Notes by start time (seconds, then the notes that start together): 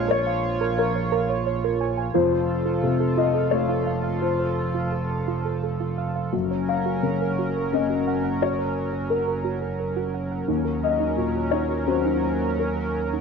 Already playing: A#1 F2 F3 G#3 F4 C#5 D#5 F5
0.08 A#4 C#5
0.26 F5
0.61 A#4
0.78 A#4 C#5
0.95 C#5
1.12 A#4
1.29 C#5
1.46 C#5
1.64 A#4
1.81 G#5
1.97 G#5
2.14 F1 F2 F3 F4 A4 C5
2.32 C5
2.66 F4
2.83 C3 A4
3.00 A4
3.17 F4 D#5
3.34 A4
3.51 A3 F4 A4 C#5
3.69 F4
3.86 F5
4.04 F5
4.22 F4 C5
4.39 C5
4.75 F4
4.92 A4
5.10 A4
5.28 F4
5.45 A4
5.63 A4
5.80 F4
5.98 F5
6.16 F5
6.32 F#1 F#2 F#3 C#4 F#4 A#4
6.51 C#5
6.69 F5
6.86 F#4
7.03 C#3 A#4
7.21 A#4
7.39 F#4
7.56 A#4
7.72 A#3 C#4 A#4 D#5
7.90 F#4
8.07 F#5
8.24 F#5
8.42 F#4 C#5
8.59 C#5
8.93 F#4
9.10 A#4
9.28 A#4
9.44 F#4
9.62 A#4
9.80 A#4
9.96 F#4
10.14 F#5
10.31 F#5
10.47 D#2 F#3 C#4 D#4 A#4
10.65 A#4
10.84 D#5
11.00 D#4
11.16 A#2 F#4
11.35 F#4
11.51 D#4 C#5
11.70 F#4
11.87 A#3 C#4 F#4 C5
12.05 D#4
12.23 C#5
12.41 C#5
12.59 D#4 A#4
12.76 A#4
13.13 D#4